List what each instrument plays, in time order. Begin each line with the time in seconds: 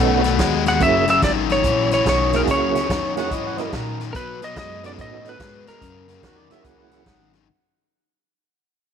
Already playing: upright bass B1, overdriven electric guitar B2 A3, tonewheel organ B3 C#4 D#4 F#4, lead electric guitar F#5
0.00 tonewheel organ A4
0.24 overdriven electric guitar B2 A3, snare, closed hi-hat
0.39 upright bass D#2, overdriven electric guitar B2 G#3, kick, snare, closed hi-hat
0.66 overdriven electric guitar B2 G#3, lead electric guitar F#5, snare, closed hi-hat
0.80 upright bass F#1, overdriven electric guitar F#2 C#3, tonewheel organ A#3 C#4 E4 F#4 G#4, lead electric guitar E5, kick, closed hi-hat
1.07 overdriven electric guitar F#2 C#3, lead electric guitar E5, snare, closed hi-hat
1.22 upright bass G#1, overdriven electric guitar F#2 D#3, lead electric guitar D5, kick, snare, closed hi-hat
1.50 overdriven electric guitar F#2 D#3, lead electric guitar C#5, snare, closed hi-hat
1.64 upright bass A#1, overdriven electric guitar F#2 E3, kick, closed hi-hat
1.91 overdriven electric guitar F#2 E3, lead electric guitar C#5, snare, closed hi-hat
2.06 upright bass B1, overdriven electric guitar F#2 D#3, lead electric guitar C#5, kick, snare, closed hi-hat
2.33 overdriven electric guitar F#2 D#3, tonewheel organ A#3 C#4 E4 F#4 G#4, lead electric guitar A#4, snare, closed hi-hat
2.47 upright bass C#2, overdriven electric guitar F#2 C#3, lead electric guitar C#5, kick, closed hi-hat
2.75 overdriven electric guitar F#2 C#3, snare, closed hi-hat
2.89 upright bass E2, overdriven electric guitar F#2 D#3, kick, snare, closed hi-hat
3.16 overdriven electric guitar F#2 D#3, tonewheel organ A#3 C#4 E4 F#4 G#4, harmonica F#5, snare, closed hi-hat
3.31 overdriven electric guitar F#2 E3, upright bass G#2, harmonica D#5, kick, closed hi-hat
3.46 harmonica F#5
3.58 overdriven electric guitar F#2 E3, tonewheel organ A#3 C#4 E4 F#4 A#4, harmonica D#5, snare, closed hi-hat
3.72 overdriven electric guitar F#2 D#3, upright bass A#2, harmonica D#4 F#4 A#4, kick, snare, closed hi-hat
4.00 overdriven electric guitar F#2 D#3, snare, closed hi-hat
4.13 overdriven electric guitar B2 F#3, upright bass B2, lead electric guitar A#4 B4, kick, closed hi-hat
4.42 overdriven electric guitar B2 F#3, lead electric guitar D#5, snare, closed hi-hat
4.56 upright bass F#2, overdriven electric guitar B2 G#3, lead electric guitar D#5, kick, snare, closed hi-hat
4.83 overdriven electric guitar B2 G#3, tonewheel organ B3 C#4 D#4 F#4 A4, lead electric guitar D5, snare, closed hi-hat
4.98 upright bass A2, overdriven electric guitar B2 A3, lead electric guitar D#5, kick, closed hi-hat
5.25 overdriven electric guitar B2 A3, snare, closed hi-hat
5.29 lead electric guitar B4
5.39 upright bass G#2, overdriven electric guitar B2 G#3, kick, snare, closed hi-hat
5.67 overdriven electric guitar B2 G#3, lead electric guitar A#4, muted upright bass stroke, snare, closed hi-hat
5.81 overdriven electric guitar F#2 C#3, upright bass F#2, kick, closed hi-hat
6.08 overdriven electric guitar F#2 C#3, snare, closed hi-hat
6.23 upright bass E2, overdriven electric guitar F#2 D#3, harmonica F#4, kick, snare, closed hi-hat
6.38 harmonica D5
6.50 overdriven electric guitar F#2 D#3, tonewheel organ A#3 C#4 E4 F#4 G#4, harmonica E5, muted upright bass stroke, snare, closed hi-hat
6.64 upright bass C#2, overdriven electric guitar F#2 E3, harmonica F#5, kick, closed hi-hat
6.79 harmonica F#5
6.91 overdriven electric guitar F#2 E3, snare, closed hi-hat
7.06 upright bass G#1, overdriven electric guitar F#2 D#3, kick, snare, closed hi-hat
7.33 overdriven electric guitar F#2 D#3, snare, closed hi-hat